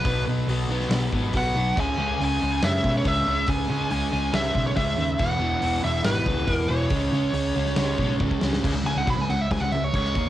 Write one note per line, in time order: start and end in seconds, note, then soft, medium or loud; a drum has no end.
0.00 0.23 B4 medium
0.05 0.22 B1 medium
0.05 0.25 B2 medium
0.05 0.26 F#3 medium
0.05 0.27 B3 loud
0.05 kick loud
0.05 open hi-hat medium
0.27 0.47 B2 medium
0.27 0.44 B2 medium
0.27 0.48 F#3 loud
0.27 0.49 B3 medium
0.47 0.64 B1 medium
0.47 0.69 B2 medium
0.47 0.70 F#3 medium
0.47 0.70 B3 medium
0.47 open hi-hat medium
0.68 0.85 B1 medium
0.68 0.90 B2 medium
0.68 0.91 F#3 medium
0.68 0.91 B3 medium
0.81 snare soft
0.89 1.07 B1 loud
0.89 1.12 B2 medium
0.89 1.12 F#3 loud
0.89 1.13 B3 loud
0.89 snare loud
0.89 open hi-hat medium
1.12 1.29 G#1 medium
1.12 1.33 B2 medium
1.12 1.34 F#3 medium
1.12 1.34 B3 medium
1.12 kick medium
1.33 1.51 B1 medium
1.33 1.55 B2 medium
1.33 1.56 F#3 medium
1.33 1.56 B3 medium
1.33 kick medium
1.33 open hi-hat medium
1.37 1.79 F#5 loud
1.55 1.71 B1 medium
1.55 1.76 B2 medium
1.55 1.76 F#3 medium
1.55 1.76 B3 medium
1.76 1.94 C#2 medium
1.76 1.98 C#3 medium
1.76 1.99 G#3 medium
1.76 1.99 C#4 loud
1.76 2.22 G#5 loud
1.76 kick loud
1.76 crash loud
1.98 2.15 C#2 medium
1.98 2.20 C#3 medium
1.98 2.21 G#3 medium
1.98 2.21 C#4 medium
2.20 2.36 C#2 medium
2.20 2.40 C#3 medium
2.20 2.41 G#3 medium
2.20 2.41 C#4 loud
2.20 open hi-hat medium
2.25 2.66 G#5 loud
2.40 2.58 C#2 medium
2.40 2.61 C#3 medium
2.40 2.62 G#3 medium
2.40 2.62 C#4 loud
2.62 2.79 F#2 medium
2.62 2.83 C#3 medium
2.62 2.83 G#3 loud
2.62 2.84 C#4 loud
2.62 2.93 E5 loud
2.62 snare loud
2.62 open hi-hat medium
2.84 3.00 B2 medium
2.84 3.04 C#3 medium
2.84 3.05 G#3 medium
2.84 3.05 C#4 medium
2.84 kick medium
2.97 3.08 C#5 medium
3.04 3.22 C#2 medium
3.04 3.25 C#3 medium
3.04 3.26 G#3 medium
3.04 3.27 C#4 medium
3.04 3.50 E5 loud
3.04 kick medium
3.04 open hi-hat medium
3.27 3.43 C#2 medium
3.27 3.46 C#3 medium
3.27 3.47 G#3 medium
3.27 3.46 C#4 medium
3.47 3.65 C#2 medium
3.47 3.67 C#3 medium
3.47 3.68 G#3 loud
3.47 3.68 C#4 medium
3.47 3.91 G#5 loud
3.47 kick loud
3.47 open hi-hat medium
3.68 3.89 C#3 medium
3.68 3.86 C#3 medium
3.68 3.91 G#3 loud
3.68 3.90 C#4 loud
3.91 4.08 C#2 medium
3.91 4.10 C#3 medium
3.91 4.12 G#3 medium
3.91 4.12 C#4 medium
3.91 4.35 G#5 loud
3.91 open hi-hat medium
4.12 4.29 C#2 medium
4.12 4.31 C#3 medium
4.12 4.32 G#3 medium
4.12 4.33 C#4 loud
4.32 4.50 C#2 medium
4.32 4.52 C#3 medium
4.32 4.54 G#3 loud
4.32 4.54 C#4 loud
4.32 4.66 E5 loud
4.32 snare loud
4.32 open hi-hat medium
4.53 4.72 B1 medium
4.53 4.74 C#3 medium
4.53 4.75 G#3 medium
4.53 4.75 C#4 medium
4.53 kick medium
4.67 4.76 C#5 medium
4.75 4.93 C#2 medium
4.75 4.95 C#3 medium
4.75 4.97 G#3 medium
4.75 4.96 C#4 loud
4.75 5.20 E5 medium
4.75 kick medium
4.75 open hi-hat medium
4.96 5.14 D#2 medium
4.96 5.17 C#3 medium
4.96 5.18 G#3 loud
4.96 5.18 C#4 loud
5.18 5.36 E1 medium
5.18 5.37 E2 loud
5.18 5.39 B2 loud
5.18 5.40 E3 loud
5.18 5.80 F#5 loud
5.18 kick loud
5.18 crash loud
5.38 5.56 E1 medium
5.38 5.59 E2 loud
5.38 5.61 B2 loud
5.38 5.62 E3 medium
5.61 5.79 E1 loud
5.61 5.81 E2 loud
5.61 5.81 B2 medium
5.61 5.83 E3 loud
5.61 open hi-hat medium
5.82 6.01 E1 medium
5.82 6.02 E2 medium
5.82 6.03 B2 loud
5.82 6.04 E3 medium
5.82 6.04 E5 medium
6.03 6.22 G#1 loud
6.03 6.25 E2 loud
6.03 6.26 B2 loud
6.03 6.27 E3 loud
6.03 6.52 B4 medium
6.03 snare loud
6.03 open hi-hat medium
6.26 6.43 C#2 medium
6.26 6.45 E2 medium
6.26 6.46 B2 medium
6.26 6.48 E3 medium
6.26 kick medium
6.47 6.65 E1 medium
6.47 6.67 E2 medium
6.47 6.68 B2 medium
6.47 6.69 E3 loud
6.47 kick medium
6.47 open hi-hat medium
6.52 6.71 A#4 medium
6.68 6.86 E1 medium
6.68 6.89 E2 medium
6.68 6.89 B2 medium
6.68 6.90 E3 loud
6.68 8.16 C#5 medium
6.90 7.08 C#2 medium
6.90 7.11 C#3 medium
6.90 7.12 G#3 loud
6.90 7.12 C#4 loud
6.90 kick loud
6.90 open hi-hat medium
7.12 7.32 C#3 medium
7.12 7.29 C#3 medium
7.12 7.33 G#3 medium
7.12 7.33 C#4 loud
7.33 7.50 C#2 medium
7.33 7.54 C#3 medium
7.33 7.55 G#3 loud
7.33 7.55 C#4 loud
7.33 open hi-hat medium
7.55 7.73 C#2 medium
7.55 7.76 C#3 medium
7.55 7.77 G#3 medium
7.55 7.78 C#4 loud
7.66 snare soft
7.76 7.94 C#2 medium
7.76 7.98 C#3 medium
7.76 7.98 G#3 medium
7.76 7.99 C#4 loud
7.76 snare loud
7.76 open hi-hat medium
7.98 8.15 B1 medium
7.98 8.20 C#3 medium
7.98 8.20 G#3 medium
7.98 8.21 C#4 medium
7.98 kick medium
8.20 8.37 C#2 medium
8.20 8.42 C#3 medium
8.20 8.42 G#3 medium
8.20 8.43 C#4 medium
8.20 kick medium
8.20 high tom medium
8.31 kick medium
8.41 8.59 C#2 medium
8.41 8.62 C#3 medium
8.41 8.63 G#3 medium
8.41 8.63 C#4 medium
8.41 snare loud
8.53 snare loud
8.64 8.72 C#2 medium
8.64 8.74 C#3 medium
8.64 8.74 G#3 loud
8.64 kick loud
8.64 crash loud
8.64 crash medium
8.73 8.83 C#2 medium
8.73 8.85 C#3 medium
8.73 8.85 G#3 medium
8.84 8.94 C#2 medium
8.84 8.96 C#3 medium
8.84 8.96 G#3 medium
8.84 8.96 G#5 loud
8.84 crash medium
8.96 9.06 C#2 medium
8.96 9.06 C#3 medium
8.96 9.07 G#3 medium
8.96 9.07 F#5 medium
9.06 9.17 B1 medium
9.06 9.16 B2 medium
9.06 9.17 F#3 loud
9.06 kick loud
9.06 crash medium
9.10 9.21 B5 medium
9.17 9.27 C#2 medium
9.17 9.28 C#3 medium
9.17 9.28 G#3 medium
9.17 9.30 G#5 medium
9.29 9.49 C#2 medium
9.29 9.46 C#3 medium
9.29 9.46 G#3 medium
9.29 9.41 F#5 medium
9.29 crash medium
9.41 9.51 E5 medium
9.51 9.60 C#2 medium
9.51 9.61 C#3 medium
9.51 9.61 G#3 medium
9.51 9.61 G#5 medium
9.51 kick loud
9.51 snare loud
9.51 crash medium
9.61 9.71 C#2 medium
9.61 9.72 C#3 medium
9.61 9.72 G#3 medium
9.61 9.72 F#5 medium
9.72 9.92 C#2 medium
9.72 9.90 C#3 medium
9.72 9.90 G#3 medium
9.72 9.84 E5 medium
9.72 crash medium
9.84 9.93 C#5 medium
9.93 10.13 C#2 loud
9.93 10.15 C#3 medium
9.93 10.16 G#3 medium
9.93 10.29 C#5 loud
9.93 kick loud
9.93 crash medium
9.97 10.16 C#4 loud
10.05 snare soft
10.15 10.25 D#2 medium
10.15 10.26 D#3 medium
10.15 10.26 A#3 loud
10.15 kick loud
10.15 crash medium
10.26 10.29 C#2 medium